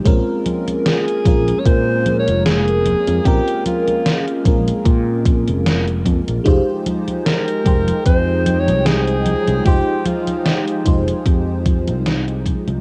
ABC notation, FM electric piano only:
X:1
M:4/4
L:1/8
Q:"Swing 16ths" 1/4=75
K:Fm
V:1 name="FM electric piano"
[A,CDFB]3 [A,CDFB]4- [A,CDFB] | [A,CDFB]3 [A,CDFB]4- [A,CDFB] | [A,EFGc]3 [A,EFcg]4- [A,EFcg] | [A,EFGc]3 [A,EFGc]4- [A,EFGc] |]